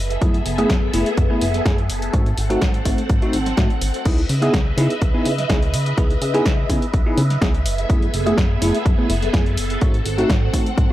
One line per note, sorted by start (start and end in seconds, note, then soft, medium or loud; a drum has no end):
0.00 0.17 F#1 medium
0.00 2.12 B3 medium
0.00 2.12 G#4 medium
0.00 4.02 A4 medium
0.00 2.12 E5 medium
0.10 closed hi-hat soft
0.21 0.42 F#2 loud
0.21 0.36 A3 medium
0.21 0.36 B3 medium
0.21 0.36 E4 medium
0.21 0.36 G#4 medium
0.21 kick loud
0.21 closed hi-hat medium
0.34 closed hi-hat soft
0.45 0.65 F#1 medium
0.45 open hi-hat medium
0.58 0.71 A3 loud
0.58 0.71 B3 medium
0.58 0.71 E4 medium
0.58 0.72 G#4 loud
0.58 closed hi-hat medium
0.70 0.89 F#2 medium
0.70 kick loud
0.70 snare loud
0.70 closed hi-hat medium
0.93 1.04 F#1 medium
0.93 1.08 A3 medium
0.93 1.08 B3 medium
0.93 1.08 E4 medium
0.93 1.08 G#4 medium
0.93 open hi-hat medium
1.06 closed hi-hat medium
1.17 1.28 F#2 medium
1.17 kick loud
1.17 closed hi-hat medium
1.30 1.43 A3 medium
1.30 1.43 B3 medium
1.30 1.43 E4 medium
1.30 1.44 G#4 medium
1.41 1.61 F#1 medium
1.41 open hi-hat loud
1.54 snare soft
1.54 closed hi-hat medium
1.65 1.91 F#2 loud
1.65 1.74 A3 medium
1.65 1.75 B3 medium
1.65 1.75 E4 medium
1.65 1.75 G#4 loud
1.65 kick loud
1.65 snare loud
1.65 closed hi-hat medium
1.78 closed hi-hat soft
1.89 2.09 F#1 medium
1.89 open hi-hat loud
2.02 closed hi-hat medium
2.13 2.33 G#2 loud
2.13 2.28 A3 medium
2.13 2.28 C4 medium
2.13 4.04 C4 medium
2.13 2.28 D#4 medium
2.13 2.28 F#4 medium
2.13 4.04 F#5 medium
2.13 kick loud
2.13 closed hi-hat medium
2.26 closed hi-hat soft
2.37 2.57 G#1 medium
2.37 open hi-hat loud
2.50 2.63 A3 loud
2.50 2.63 C4 medium
2.50 2.63 D#4 medium
2.50 2.64 F#4 loud
2.50 closed hi-hat medium
2.62 2.81 G#2 medium
2.62 kick loud
2.62 snare loud
2.62 closed hi-hat medium
2.74 closed hi-hat soft
2.85 2.96 G#1 medium
2.85 3.00 A3 medium
2.85 3.00 C4 medium
2.85 3.00 D#4 medium
2.85 3.00 F#4 medium
2.85 kick medium
2.85 open hi-hat medium
2.98 closed hi-hat medium
3.09 3.20 G#2 medium
3.09 kick loud
3.09 closed hi-hat medium
3.22 3.35 A3 medium
3.22 3.35 C4 medium
3.22 3.35 D#4 medium
3.22 3.36 F#4 medium
3.22 closed hi-hat soft
3.33 3.53 G#1 medium
3.33 open hi-hat loud
3.46 snare soft
3.46 closed hi-hat medium
3.57 3.68 G#2 loud
3.57 3.66 A3 medium
3.57 3.67 C4 medium
3.57 3.67 D#4 medium
3.57 3.67 F#4 medium
3.57 kick loud
3.57 snare loud
3.57 closed hi-hat medium
3.70 closed hi-hat soft
3.81 3.92 G#1 medium
3.81 open hi-hat loud
3.94 closed hi-hat medium
4.05 4.25 C#2 medium
4.05 4.20 B3 medium
4.05 4.20 D#4 medium
4.05 4.20 E4 medium
4.05 4.20 G#4 medium
4.05 7.62 B4 medium
4.05 7.62 D#5 medium
4.05 9.78 E5 medium
4.05 kick loud
4.05 closed hi-hat medium
4.05 crash medium
4.18 closed hi-hat soft
4.29 4.49 C#3 medium
4.29 open hi-hat loud
4.42 4.55 B3 loud
4.42 4.55 D#4 medium
4.42 4.55 E4 medium
4.42 4.56 G#4 loud
4.42 closed hi-hat medium
4.54 4.74 C#2 medium
4.54 kick loud
4.54 snare loud
4.54 closed hi-hat medium
4.77 4.88 C#3 medium
4.77 4.92 B3 medium
4.77 4.92 D#4 medium
4.77 4.92 E4 medium
4.77 4.92 G#4 medium
4.77 open hi-hat loud
4.90 closed hi-hat medium
5.02 5.12 C#2 loud
5.02 kick loud
5.02 closed hi-hat medium
5.14 5.27 B3 medium
5.14 5.27 D#4 medium
5.14 5.27 E4 medium
5.14 5.28 G#4 medium
5.25 5.46 C#3 medium
5.25 open hi-hat loud
5.38 snare soft
5.38 closed hi-hat medium
5.49 5.75 C#2 loud
5.49 5.58 B3 medium
5.49 5.59 D#4 medium
5.49 5.59 E4 medium
5.49 5.59 G#4 medium
5.49 kick loud
5.49 snare loud
5.49 closed hi-hat medium
5.62 closed hi-hat soft
5.73 5.93 C#3 medium
5.73 open hi-hat loud
5.86 closed hi-hat medium
5.97 6.17 C#2 loud
5.97 6.12 B3 medium
5.97 6.12 D#4 medium
5.97 6.12 E4 medium
5.97 6.12 G#4 medium
5.97 kick loud
5.97 closed hi-hat medium
6.10 closed hi-hat soft
6.21 6.41 C#3 medium
6.21 open hi-hat loud
6.34 6.47 B3 loud
6.34 6.47 D#4 medium
6.34 6.47 E4 medium
6.34 6.48 G#4 loud
6.34 closed hi-hat soft
6.46 6.65 C#2 medium
6.46 kick loud
6.46 snare loud
6.46 closed hi-hat medium
6.69 6.80 C#3 medium
6.69 6.84 B3 medium
6.69 6.84 D#4 medium
6.69 6.84 E4 medium
6.69 6.84 G#4 medium
6.69 kick medium
6.69 open hi-hat loud
6.82 closed hi-hat medium
6.94 7.04 C#2 medium
6.94 kick loud
6.94 closed hi-hat medium
7.06 7.19 B3 medium
7.06 7.19 D#4 medium
7.06 7.19 E4 medium
7.06 7.20 G#4 medium
7.17 7.37 C#3 medium
7.17 open hi-hat loud
7.30 snare soft
7.30 closed hi-hat medium
7.41 7.67 C#2 loud
7.41 7.51 B3 medium
7.41 7.51 D#4 medium
7.41 7.51 E4 medium
7.41 7.51 G#4 loud
7.41 kick loud
7.41 snare loud
7.41 closed hi-hat medium
7.54 closed hi-hat soft
7.65 7.85 F#1 loud
7.65 9.79 B3 medium
7.65 9.80 G#4 medium
7.65 10.93 A4 medium
7.65 open hi-hat loud
7.78 closed hi-hat medium
7.89 8.10 F#2 medium
7.89 8.04 A3 medium
7.89 8.04 B3 medium
7.89 8.04 E4 medium
7.89 8.04 G#4 medium
7.89 kick loud
7.89 closed hi-hat medium
8.02 closed hi-hat soft
8.14 8.34 F#1 medium
8.14 open hi-hat loud
8.26 8.39 A3 loud
8.26 8.39 B3 medium
8.26 8.39 E4 medium
8.26 8.40 G#4 loud
8.26 closed hi-hat soft
8.38 8.58 F#2 medium
8.38 kick loud
8.38 snare loud
8.38 closed hi-hat medium
8.61 8.72 F#1 medium
8.61 8.76 A3 medium
8.61 8.76 B3 medium
8.61 8.76 E4 medium
8.61 8.76 G#4 medium
8.61 open hi-hat loud
8.75 closed hi-hat medium
8.86 8.96 F#2 medium
8.86 kick loud
8.86 closed hi-hat medium
8.98 9.11 A3 medium
8.98 9.11 B3 medium
8.98 9.11 E4 medium
8.98 9.12 G#4 medium
9.10 9.29 F#1 medium
9.10 open hi-hat loud
9.22 snare soft
9.22 closed hi-hat soft
9.33 9.59 F#2 loud
9.33 9.42 A3 medium
9.33 9.43 B3 medium
9.33 9.43 E4 medium
9.33 9.43 G#4 loud
9.33 kick loud
9.33 snare loud
9.33 closed hi-hat medium
9.46 closed hi-hat soft
9.57 9.77 F#1 medium
9.57 open hi-hat loud
9.70 closed hi-hat medium
9.81 10.01 G#2 medium
9.81 9.96 A3 medium
9.81 10.93 C4 medium
9.81 9.96 C4 medium
9.81 9.96 D#4 medium
9.81 9.96 F#4 medium
9.81 10.93 F#5 medium
9.81 kick loud
9.81 closed hi-hat medium
9.94 closed hi-hat soft
10.05 10.25 G#1 medium
10.05 open hi-hat loud
10.18 10.31 A3 loud
10.18 10.31 C4 medium
10.18 10.31 D#4 medium
10.18 10.32 F#4 loud
10.18 closed hi-hat soft
10.30 10.49 G#2 medium
10.30 kick loud
10.30 snare loud
10.30 closed hi-hat medium
10.53 10.64 G#1 medium
10.53 10.68 A3 medium
10.53 10.68 C4 medium
10.53 10.68 D#4 medium
10.53 10.68 F#4 medium
10.53 kick medium
10.53 open hi-hat loud
10.66 closed hi-hat medium
10.78 10.88 G#2 medium
10.78 kick loud
10.78 closed hi-hat medium